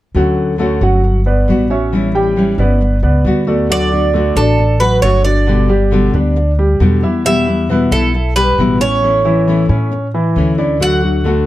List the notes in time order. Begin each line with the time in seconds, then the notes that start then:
0.15 D2 D3 F#3 A3 C#4 F#4 F#5
0.58 D3 A3 C#4 F#4 A4 C#5
0.81 G1 F#3 A3 C#4 F#4 F#5
1.03 muted nylon-string guitar stroke
1.26 B3 B4 D5
1.48 A1 G3 B3 F#4
1.70 B3 C#4 F#4 C#5 E5
1.93 E3 G3 C#4 E4
2.15 G3 G4 G5
2.36 E3 G3 C#4 E4
2.58 G1 G3 B3 C#4 E4 B4 D5
2.81 muted nylon-string guitar stroke
3.02 C#2 B3 B4 D5
3.24 D2 G3 B3 F#4
3.47 A3 B3 F#4 A4 D5
3.69 D3 F#3 A3 D4 F#4 D5
3.92 A3 D4 F#4
4.13 D3 A3 D4 F#4 A4
4.36 A1 A3 D4 F#4 A4 D5
4.58 muted nylon-string guitar stroke
4.80 F#3 F#4 B4
5.02 G1 D3 A3 D4 F#4 C#5
5.24 A3 D4 F#4 D5
5.47 B2 D3 G3 B3 G4
5.69 G3 B3 G4
5.91 B2 D3 G3 B3 G4
6.13 D2 G3 B3 D4 G4 D5
6.36 muted nylon-string guitar stroke
6.59 G3 G4
6.80 E2 B2 D3 G3 B3 G4
7.03 G3 B3 E4 G4 E5
7.25 B2 E3 G3 B3 E4 G4 E5
7.47 G3 B3 E4
7.69 B2 E3 G3 B3 E4 B4
7.91 B1 G3 B3 E4 A4 E5
8.14 muted nylon-string guitar stroke
8.36 G3 G4 B4
8.58 A1 B2 E3 G3 B3 E4
8.80 G3 B3 C#4 E4 C#5
9.02 E3 A3 C#4 E4
9.25 E3 A3 C#4 E4
9.47 E3 A3 C#4 E4
9.69 A2 A3 C#4 E4 C#5
9.91 muted nylon-string guitar stroke
10.14 E3 E4
10.36 D2 E3 A3 C#4 E4
10.58 A3 C#4 D4 E4 D5
10.80 D3 F#3 A3 D4 F#4 F#5
11.03 A3 D4 F#4
11.24 D3 A3 D4 F#4 A4